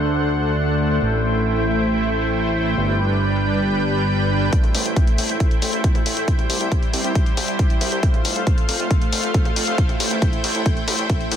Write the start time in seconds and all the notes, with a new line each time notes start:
Already playing: D2
0.15 A3 D4 C5 F#5
0.37 A3 D4 C5 F#5
0.58 A3 D4 C5 F#5
0.80 A3 D4 C5 F#5
1.02 A1 A3 E4 C5 G5
1.24 A3 E4 C5 G5
1.46 A3 E4 C5 G5
1.68 A3 E4 C5 G5
1.90 A3 E4 C5 G5
2.12 A3 E4 C5 G5
2.34 A3 E4 C5 G5
2.56 A3 E4 C5 G5
2.77 G1 G3 D4 B4 G5
2.99 G3 D4 B4 G5
3.21 G3 D4 B4 G5
3.43 G3 D4 B4 G5
3.65 G3 D4 B4 G5
3.87 G3 D4 B4 G5
4.09 G3 D4 B4 G5
4.31 G3 D4 B4 G5
4.53 A3 E4 C5 G5, kick, closed hi-hat
4.64 closed hi-hat, mid tom
4.74 A1 A3 E4 C5 G5, open hi-hat
4.85 A1, closed hi-hat
4.96 A3 E4 C5 G5, kick, closed hi-hat
5.07 closed hi-hat
5.18 A1 A3 E4 C5 G5, open hi-hat
5.29 A1, closed hi-hat
5.40 A3 E4 C5 G5, kick, closed hi-hat
5.51 closed hi-hat
5.62 A1 A3 E4 C5 G5, open hi-hat
5.73 A1, closed hi-hat
5.84 A3 E4 C5 G5, kick, closed hi-hat
5.95 closed hi-hat, mid tom
6.06 A1 A3 E4 C5 G5, open hi-hat
6.17 A1, closed hi-hat
6.28 G3 E4 C5 G5, kick, closed hi-hat
6.39 closed hi-hat, mid tom
6.50 C2 G3 E4 C5 G5, open hi-hat
6.61 C2, closed hi-hat
6.72 G3 E4 C5 G5, kick, closed hi-hat
6.83 closed hi-hat
6.93 C2 G3 E4 C5 G5, open hi-hat
7.04 C2, closed hi-hat
7.15 G3 E4 C5 G5, kick, closed hi-hat
7.26 closed hi-hat
7.37 C2 G3 E4 C5 G5, open hi-hat, mid tom
7.48 C2, closed hi-hat
7.59 G3 E4 C5 G5, kick, closed hi-hat
7.70 closed hi-hat
7.81 C2 G3 E4 C5 G5, open hi-hat, mid tom
7.92 C2, closed hi-hat
8.03 A3 F4 C5 F5, kick, closed hi-hat
8.14 closed hi-hat, mid tom
8.25 F1 A3 F4 C5 F5, open hi-hat
8.36 F1, closed hi-hat
8.47 A3 F4 C5 F5, kick, closed hi-hat
8.58 closed hi-hat
8.69 F1 A3 F4 C5 F5, open hi-hat
8.80 F1, closed hi-hat
8.91 A3 F4 C5 F5, kick, closed hi-hat
9.02 closed hi-hat
9.12 F1 A3 F4 C5 F5, open hi-hat
9.23 F1, closed hi-hat
9.34 A3 F4 C5 F5, kick, closed hi-hat
9.45 closed hi-hat, mid tom
9.56 F1 A3 F4 C5 F5, open hi-hat
9.67 F1, closed hi-hat
9.78 A3 E4 C5 G5, kick, closed hi-hat
9.89 closed hi-hat, mid tom
10.00 A1 A3 E4 C5 G5, open hi-hat
10.11 A1, closed hi-hat
10.22 A3 E4 C5 G5, kick, closed hi-hat
10.33 closed hi-hat
10.44 A1 A3 E4 C5 G5, open hi-hat
10.55 A1, closed hi-hat
10.66 A3 E4 C5 G5, kick, closed hi-hat
10.77 closed hi-hat
10.88 A1 A3 E4 C5 G5, open hi-hat, mid tom
10.99 A1, closed hi-hat
11.09 A3 E4 C5 G5, kick, closed hi-hat
11.21 closed hi-hat
11.31 A1 A3 E4 C5 G5, open hi-hat, mid tom